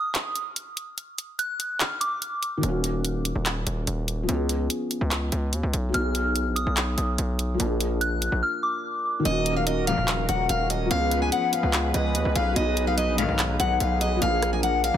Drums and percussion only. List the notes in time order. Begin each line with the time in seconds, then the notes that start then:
0.15 clap, closed hi-hat
0.36 closed hi-hat
0.56 closed hi-hat
0.77 closed hi-hat
0.98 closed hi-hat
1.18 closed hi-hat
1.39 closed hi-hat
1.60 closed hi-hat
1.80 clap, closed hi-hat
2.01 closed hi-hat
2.22 closed hi-hat
2.43 closed hi-hat
2.63 closed hi-hat
2.84 closed hi-hat
3.05 closed hi-hat
3.25 closed hi-hat
3.46 clap, closed hi-hat
3.67 closed hi-hat
3.87 closed hi-hat
4.08 closed hi-hat
4.29 closed hi-hat
4.49 closed hi-hat
4.70 closed hi-hat
4.91 closed hi-hat
5.11 clap, closed hi-hat
5.32 closed hi-hat
5.53 closed hi-hat
5.74 closed hi-hat
5.94 closed hi-hat
6.15 closed hi-hat
6.36 closed hi-hat
6.56 closed hi-hat
6.77 clap, closed hi-hat
6.98 closed hi-hat
7.18 closed hi-hat
7.39 closed hi-hat
7.60 closed hi-hat
7.81 closed hi-hat
8.01 closed hi-hat
8.22 closed hi-hat
9.25 closed hi-hat
9.46 closed hi-hat
9.67 closed hi-hat
9.87 closed hi-hat
10.08 clap, closed hi-hat
10.29 closed hi-hat
10.49 closed hi-hat
10.70 closed hi-hat
10.91 closed hi-hat
11.11 closed hi-hat
11.32 closed hi-hat
11.53 closed hi-hat
11.73 clap, closed hi-hat
11.94 closed hi-hat
12.15 closed hi-hat
12.36 closed hi-hat
12.56 closed hi-hat
12.77 closed hi-hat
12.98 closed hi-hat
13.18 closed hi-hat
13.39 clap, closed hi-hat
13.60 closed hi-hat
13.80 closed hi-hat
14.01 closed hi-hat
14.22 closed hi-hat
14.43 cross-stick, closed hi-hat
14.63 closed hi-hat
14.84 closed hi-hat